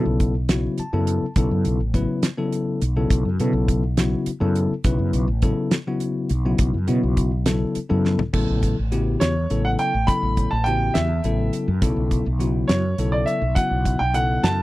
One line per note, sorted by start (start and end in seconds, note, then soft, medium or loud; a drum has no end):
0.00 0.34 C#3 medium
0.00 0.34 F#3 medium
0.00 0.34 B3 medium
0.00 0.34 E4 medium
0.00 0.34 A4 medium
0.05 0.66 B1 medium
0.20 kick medium
0.20 closed hi-hat medium
0.49 0.81 C#3 medium
0.49 0.81 F#3 medium
0.49 0.81 B3 medium
0.49 0.81 E4 medium
0.49 0.81 F#4 medium
0.49 snare loud
0.49 closed hi-hat medium
0.78 1.33 A5 medium
0.78 muted fretless electric bass stroke soft
0.78 closed hi-hat medium
0.93 1.17 F#2 medium
0.93 1.25 C#3 medium
0.93 1.25 F#3 medium
0.93 1.25 B3 medium
0.93 1.25 E4 medium
0.93 1.25 A4 medium
1.07 closed hi-hat medium
1.22 muted fretless electric bass stroke soft
1.36 1.49 B1 medium
1.36 1.79 C#3 medium
1.36 1.79 F#3 medium
1.36 1.79 B3 medium
1.36 1.79 E4 medium
1.36 1.79 A4 medium
1.36 kick loud
1.36 closed hi-hat medium
1.51 1.63 F#2 medium
1.65 1.78 B1 medium
1.65 closed hi-hat medium
1.80 2.05 A1 medium
1.94 2.26 C#3 medium
1.94 2.26 F#3 medium
1.94 2.26 B3 medium
1.94 2.26 E4 medium
1.94 2.26 B4 medium
1.94 kick medium
1.94 closed hi-hat medium
2.23 snare medium
2.23 closed hi-hat medium
2.38 2.80 C#3 medium
2.38 2.80 F#3 medium
2.38 2.80 B3 medium
2.38 2.80 E4 medium
2.38 2.80 A4 medium
2.53 closed hi-hat medium
2.82 3.06 B1 medium
2.82 closed hi-hat medium
2.96 3.28 C#3 medium
2.96 3.28 F#3 medium
2.96 3.28 B3 medium
2.96 3.28 E4 medium
2.96 3.28 A4 medium
3.10 3.23 B1 medium
3.10 kick loud
3.10 closed hi-hat medium
3.25 3.37 F#2 medium
3.40 3.52 B2 medium
3.40 3.82 C#3 medium
3.40 3.82 F#3 medium
3.40 3.82 B3 medium
3.40 3.82 E4 medium
3.40 3.82 A4 loud
3.40 closed hi-hat medium
3.53 4.14 B1 medium
3.68 kick medium
3.68 closed hi-hat medium
3.97 4.30 C#3 medium
3.97 4.30 F#3 medium
3.97 4.30 B3 medium
3.97 4.30 E4 medium
3.97 4.30 F#4 medium
3.97 snare loud
3.97 closed hi-hat medium
4.26 muted fretless electric bass stroke soft
4.26 closed hi-hat medium
4.40 4.66 F#2 medium
4.40 4.72 C#3 medium
4.40 4.72 F#3 medium
4.40 4.73 B3 medium
4.40 4.73 E4 medium
4.40 4.73 A4 loud
4.55 closed hi-hat medium
4.71 muted fretless electric bass stroke soft
4.84 4.97 B1 medium
4.84 5.27 C#3 medium
4.84 5.27 F#3 medium
4.84 5.27 B3 medium
4.84 5.27 E4 medium
4.84 5.27 B4 medium
4.84 kick loud
4.84 closed hi-hat medium
4.99 5.11 F#2 medium
5.13 5.26 B1 medium
5.13 closed hi-hat medium
5.28 5.52 A1 medium
5.42 5.74 C#3 medium
5.42 5.74 F#3 medium
5.42 5.75 B3 medium
5.42 5.75 E4 medium
5.42 5.75 A4 medium
5.42 kick medium
5.42 closed hi-hat medium
5.71 snare loud
5.71 closed hi-hat medium
5.87 6.29 C#3 medium
5.87 6.29 F#3 medium
5.87 6.29 B3 medium
5.87 6.29 E4 medium
5.87 6.29 F#4 medium
6.00 closed hi-hat medium
6.29 6.55 B1 medium
6.29 closed hi-hat medium
6.45 6.77 C#3 medium
6.45 6.77 F#3 medium
6.45 6.77 B3 medium
6.45 6.77 E4 medium
6.45 6.77 F#4 medium
6.58 6.71 B1 medium
6.58 kick loud
6.58 closed hi-hat medium
6.74 6.86 F#2 medium
6.87 7.01 B2 medium
6.87 7.30 C#3 medium
6.87 7.30 F#3 medium
6.87 7.30 B3 medium
6.87 7.30 E4 medium
6.87 7.30 F#4 loud
6.87 closed hi-hat medium
7.03 7.64 B1 medium
7.17 kick medium
7.17 closed hi-hat medium
7.46 7.78 C#3 medium
7.46 7.78 F#3 medium
7.46 7.78 B3 medium
7.46 7.78 E4 medium
7.46 7.78 A4 medium
7.46 snare loud
7.46 closed hi-hat medium
7.75 muted fretless electric bass stroke soft
7.75 closed hi-hat medium
7.90 8.15 F#2 medium
7.90 8.21 C#3 medium
7.90 8.21 F#3 medium
7.90 8.21 B3 medium
7.90 8.21 E4 medium
7.90 8.22 A4 medium
8.05 snare medium
8.19 muted fretless electric bass stroke soft
8.19 floor tom medium
8.33 8.46 A1 medium
8.33 8.75 C#3 medium
8.33 8.75 F#3 medium
8.33 8.76 B3 medium
8.33 8.76 E4 medium
8.33 8.76 A4 loud
8.33 kick medium
8.33 crash medium
8.50 8.73 A1 medium
8.63 kick medium
8.63 closed hi-hat medium
8.79 9.15 A1 medium
8.92 9.34 C#3 medium
8.92 9.34 B3 medium
8.92 9.34 E4 medium
8.92 9.34 F#4 medium
8.92 9.34 G4 medium
8.92 closed hi-hat medium
9.20 9.46 E2 medium
9.20 9.61 C#5 medium
9.20 snare loud
9.20 closed hi-hat medium
9.50 9.75 A1 medium
9.50 9.92 C#3 medium
9.50 9.92 F#3 medium
9.50 9.92 B3 medium
9.50 9.92 E4 medium
9.50 9.92 A4 medium
9.50 closed hi-hat medium
9.65 9.70 F#5 medium
9.79 10.09 G5 medium
9.79 closed hi-hat medium
9.94 10.06 A1 medium
10.07 10.50 C#3 medium
10.07 10.50 F#3 medium
10.07 10.50 B3 medium
10.07 10.50 E4 medium
10.07 10.50 A4 medium
10.07 10.52 B5 medium
10.07 kick medium
10.07 closed hi-hat medium
10.23 10.47 A1 medium
10.37 kick medium
10.37 closed hi-hat soft
10.51 10.88 A1 medium
10.51 10.66 A5 medium
10.64 11.08 C#3 medium
10.64 11.09 B3 medium
10.64 11.09 E4 medium
10.64 11.08 F#4 medium
10.64 11.09 G4 medium
10.64 10.95 G5 medium
10.64 closed hi-hat soft
10.94 11.20 E2 medium
10.94 11.56 E5 medium
10.94 snare medium
10.94 closed hi-hat medium
11.24 11.48 A1 medium
11.24 11.67 C#3 medium
11.24 11.67 F#3 medium
11.24 11.67 B3 medium
11.24 11.67 E4 medium
11.24 11.67 A4 medium
11.24 closed hi-hat medium
11.53 closed hi-hat medium
11.68 11.80 F#2 medium
11.81 11.94 B1 medium
11.81 12.24 C#3 medium
11.81 12.24 F#3 medium
11.81 12.24 B3 medium
11.81 12.24 E4 medium
11.81 12.25 A4 loud
11.81 kick loud
11.81 closed hi-hat medium
11.97 12.21 B1 medium
12.11 kick medium
12.11 closed hi-hat medium
12.26 12.63 B1 medium
12.39 12.82 C#3 medium
12.39 12.82 F#3 medium
12.39 12.82 B3 medium
12.39 12.82 E4 medium
12.39 12.83 F#4 medium
12.39 closed hi-hat medium
12.68 12.94 F#2 medium
12.68 13.14 C#5 medium
12.68 snare medium
12.68 closed hi-hat medium
12.98 13.23 B1 medium
12.98 13.41 C#3 medium
12.98 13.41 F#3 medium
12.98 13.41 B3 medium
12.98 13.41 E4 medium
12.98 13.41 A4 medium
12.98 closed hi-hat medium
13.12 13.28 D5 medium
13.26 13.54 E5 medium
13.26 closed hi-hat medium
13.42 13.54 B1 medium
13.55 13.99 C#3 medium
13.55 13.99 F#3 medium
13.55 13.99 B3 medium
13.55 13.99 E4 medium
13.55 13.99 F#4 medium
13.55 14.01 F#5 medium
13.55 kick loud
13.55 closed hi-hat medium
13.71 13.96 B1 medium
13.85 kick medium
13.85 closed hi-hat medium
13.99 14.37 B1 medium
13.99 14.13 G5 medium
14.14 14.57 C#3 medium
14.14 14.57 F#3 medium
14.14 14.57 B3 medium
14.14 14.57 E4 medium
14.14 14.57 A4 medium
14.14 14.45 F#5 medium
14.14 closed hi-hat medium
14.43 14.62 F#2 medium
14.43 14.62 A5 medium
14.43 snare medium
14.43 closed hi-hat medium